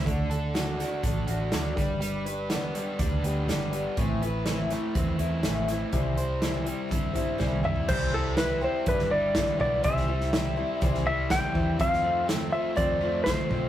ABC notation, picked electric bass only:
X:1
M:4/4
L:1/8
Q:1/4=123
K:Clyd
V:1 name="Picked electric bass" clef=bass
D,,4 A,,, A,,, D,, G,,,- | G,,,3 z D,, D,, G,,,2 | A,,,4 E,, E,, A,,,2 | C,,4 G,, G,, C,,2 |
C,,4 G,,,3 B,,, | C,,4 C,,3 E,, | =F,,4 F,,3 B,,, |]